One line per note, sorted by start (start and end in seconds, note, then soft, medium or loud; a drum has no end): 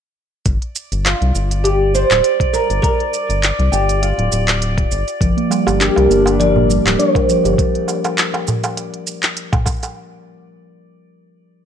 0.45 0.58 G1 medium
0.45 7.60 D5 medium
0.45 kick loud
0.45 closed hi-hat medium
0.45 shaker soft
0.62 closed hi-hat soft
0.76 shaker medium
0.92 1.14 G1 medium
0.92 closed hi-hat soft
0.92 shaker soft
1.05 1.66 F4 medium
1.05 clap medium
1.05 closed hi-hat medium
1.05 shaker soft
1.22 1.32 C2 medium
1.22 closed hi-hat soft
1.35 2.05 G1 medium
1.35 shaker medium
1.51 closed hi-hat soft
1.51 shaker soft
1.64 1.94 G4 medium
1.64 closed hi-hat medium
1.64 shaker soft
1.95 2.53 C5 loud
1.95 shaker medium
2.11 2.21 D1 loud
2.11 clap medium
2.11 closed hi-hat soft
2.11 shaker soft
2.24 closed hi-hat medium
2.24 shaker soft
2.40 kick medium
2.40 closed hi-hat soft
2.53 2.81 A#4 loud
2.53 shaker medium
2.70 2.81 G1 loud
2.70 closed hi-hat soft
2.70 shaker soft
2.82 3.72 A#4 loud
2.82 kick loud
2.82 closed hi-hat medium
2.82 shaker soft
3.00 closed hi-hat soft
3.14 shaker medium
3.30 3.52 G1 medium
3.30 closed hi-hat soft
3.30 shaker soft
3.43 clap medium
3.43 closed hi-hat medium
3.43 shaker soft
3.59 3.70 C2 medium
3.59 closed hi-hat soft
3.72 4.13 G1 loud
3.72 4.03 G4 medium
3.72 shaker medium
3.89 closed hi-hat soft
3.89 shaker soft
4.03 4.88 F4 medium
4.03 closed hi-hat medium
4.03 shaker soft
4.18 4.29 D1 loud
4.18 closed hi-hat soft
4.32 4.87 D1 loud
4.32 shaker medium
4.48 clap medium
4.48 closed hi-hat soft
4.48 shaker soft
4.62 closed hi-hat medium
4.62 shaker soft
4.78 kick loud
4.78 closed hi-hat soft
4.91 5.04 G1 medium
4.91 shaker medium
5.08 closed hi-hat soft
5.08 shaker soft
5.21 5.34 G1 medium
5.21 5.36 F3 loud
5.21 7.56 G3 medium
5.21 7.56 D4 medium
5.21 7.57 G4 medium
5.21 7.56 A#4 loud
5.21 kick loud
5.21 closed hi-hat medium
5.21 shaker soft
5.37 5.45 A#3 medium
5.37 closed hi-hat soft
5.50 5.60 G3 medium
5.50 darbuka ka medium
5.50 shaker medium
5.67 5.90 G1 medium
5.67 5.75 G4 loud
5.67 closed hi-hat soft
5.67 darbuka tek medium
5.67 shaker soft
5.80 5.96 D4 loud
5.80 6.39 G4 medium
5.80 clap medium
5.80 closed hi-hat medium
5.80 shaker soft
5.96 6.07 C2 medium
5.96 6.09 A#4 loud
5.96 closed hi-hat soft
5.96 darbuka tek medium
6.10 6.80 G1 loud
6.10 6.25 A#3 loud
6.10 shaker medium
6.26 6.38 G4 medium
6.26 closed hi-hat soft
6.26 darbuka tek medium
6.26 shaker soft
6.40 6.54 F3 loud
6.40 6.99 D5 loud
6.40 closed hi-hat medium
6.40 shaker soft
6.56 6.64 A#3 medium
6.56 darbuka dum medium
6.69 6.78 G3 loud
6.69 shaker medium
6.85 6.96 D1 medium
6.85 6.99 G4 medium
6.85 clap medium
6.85 closed hi-hat soft
6.85 darbuka ka soft
6.85 shaker soft
6.99 7.15 D4 loud
6.99 7.55 C5 medium
6.99 closed hi-hat medium
6.99 shaker soft
7.15 7.28 A#4 loud
7.15 kick loud
7.15 closed hi-hat soft
7.15 darbuka ka soft
7.29 7.44 F3 loud
7.29 shaker medium
7.45 7.56 G1 loud
7.45 7.57 G4 medium
7.45 closed hi-hat soft
7.45 shaker soft
7.58 kick loud
7.58 closed hi-hat medium
7.58 shaker soft
7.75 closed hi-hat soft
7.88 darbuka ka medium
7.88 shaker medium
8.04 closed hi-hat soft
8.04 darbuka tek medium
8.04 shaker soft
8.18 clap medium
8.18 closed hi-hat medium
8.18 shaker soft
8.34 closed hi-hat soft
8.34 darbuka tek medium
8.47 darbuka dum medium
8.47 shaker medium
8.64 closed hi-hat soft
8.64 darbuka tek medium
8.64 shaker soft
8.77 closed hi-hat medium
8.77 darbuka ka soft
8.77 shaker soft
8.94 closed hi-hat soft
9.07 shaker medium
9.23 clap medium
9.23 closed hi-hat soft
9.23 shaker soft
9.37 closed hi-hat medium
9.37 shaker soft
9.53 kick loud
9.53 closed hi-hat soft
9.53 darbuka tek medium
9.53 darbuka dum medium
9.66 kick medium
9.66 darbuka tek medium
9.66 shaker medium
9.83 closed hi-hat soft
9.83 darbuka ka medium
9.83 shaker soft